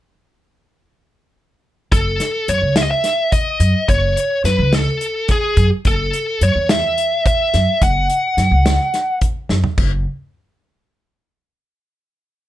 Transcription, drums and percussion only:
1.92 kick, closed hi-hat
2.20 snare, closed hi-hat
2.48 closed hi-hat
2.76 snare, closed hi-hat
3.04 snare, closed hi-hat
3.32 kick, closed hi-hat
3.60 closed hi-hat
3.89 kick, closed hi-hat
4.17 closed hi-hat
4.45 snare, closed hi-hat
4.73 snare, closed hi-hat
5.01 closed hi-hat
5.28 kick, snare, closed hi-hat
5.57 kick, closed hi-hat
5.85 kick, closed hi-hat
6.13 closed hi-hat
6.41 closed hi-hat
6.69 snare, closed hi-hat
6.98 closed hi-hat
7.26 kick, closed hi-hat
7.54 snare, closed hi-hat
7.82 kick, closed hi-hat
8.10 closed hi-hat
8.38 snare, closed hi-hat
8.66 snare, closed hi-hat
8.94 snare, closed hi-hat
9.21 kick, closed hi-hat
9.49 snare
9.64 floor tom
9.78 kick, crash

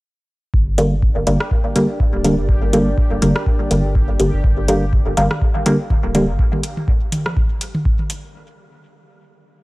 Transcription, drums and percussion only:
0.54 kick
0.78 closed hi-hat
1.02 kick
1.27 closed hi-hat
1.40 cross-stick
1.51 kick
1.76 closed hi-hat
2.00 kick
2.25 closed hi-hat
2.49 kick
2.73 closed hi-hat
2.98 kick
3.22 closed hi-hat
3.36 cross-stick
3.46 kick
3.71 closed hi-hat
3.95 kick
4.20 closed hi-hat
4.44 kick
4.68 closed hi-hat, high tom
4.93 kick, high tom
5.17 closed hi-hat
5.31 cross-stick, high tom
5.42 kick
5.55 high tom
5.66 closed hi-hat
5.90 kick, high tom
6.15 closed hi-hat, high tom
6.39 kick
6.53 high tom
6.63 closed hi-hat
6.77 high tom
6.88 kick
7.12 closed hi-hat, high tom
7.26 cross-stick, low conga
7.37 kick, high tom
7.61 closed hi-hat
7.75 high tom
7.85 kick
7.99 high tom
8.10 closed hi-hat

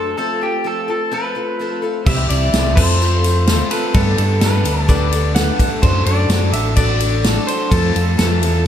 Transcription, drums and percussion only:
2.06 kick, tambourine, crash
2.30 ride
2.53 snare, ride, tambourine
2.77 kick, tambourine, crash
3.02 tambourine
3.24 ride, tambourine
3.47 snare, ride, tambourine
3.71 ride, tambourine
3.94 kick, ride, tambourine
4.18 ride
4.41 snare, ride, tambourine
4.65 ride, tambourine
4.88 kick, ride, tambourine
5.12 ride, tambourine
5.36 snare, ride, tambourine
5.59 kick, ride, tambourine
5.83 kick, ride, tambourine
6.06 ride
6.30 snare, ride, tambourine
6.53 ride, tambourine
6.76 kick, ride, tambourine
7.00 ride, tambourine
7.24 snare, ride, tambourine
7.48 ride, tambourine
7.72 kick, ride, tambourine
7.96 ride
8.19 snare, ride, tambourine
8.43 ride, tambourine

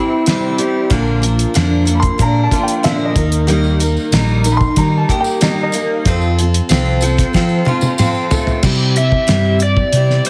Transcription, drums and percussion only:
0.26 snare, closed hi-hat
0.58 closed hi-hat
0.91 kick, closed hi-hat
1.23 closed hi-hat
1.39 closed hi-hat
1.55 snare, closed hi-hat
1.87 closed hi-hat
2.02 kick, closed hi-hat
2.19 kick, closed hi-hat
2.51 kick, closed hi-hat
2.68 closed hi-hat
2.84 snare, closed hi-hat
3.16 kick, closed hi-hat
3.32 closed hi-hat
3.48 closed hi-hat, tambourine
3.64 tambourine
3.80 closed hi-hat, tambourine
3.97 tambourine
4.12 snare, closed hi-hat, tambourine
4.29 tambourine
4.44 closed hi-hat, tambourine
4.61 kick, tambourine
4.76 kick, closed hi-hat, tambourine
5.09 kick, closed hi-hat
5.24 tambourine
5.41 snare, closed hi-hat, tambourine
5.72 closed hi-hat, tambourine
6.05 kick, closed hi-hat, tambourine
6.21 tambourine
6.39 closed hi-hat
6.54 closed hi-hat
6.69 snare, closed hi-hat, tambourine
6.85 tambourine
7.01 closed hi-hat, tambourine
7.17 kick, snare, closed hi-hat, tambourine
7.33 kick, snare, tambourine
7.49 tambourine
7.65 high tom, tambourine
7.81 high tom, tambourine
7.98 mid tom, tambourine
8.15 tambourine
8.31 floor tom, tambourine
8.47 floor tom, tambourine
8.63 kick, crash
8.96 closed hi-hat
9.12 kick
9.28 snare, closed hi-hat
9.60 closed hi-hat
9.77 kick
9.93 closed hi-hat
10.10 snare
10.25 closed hi-hat

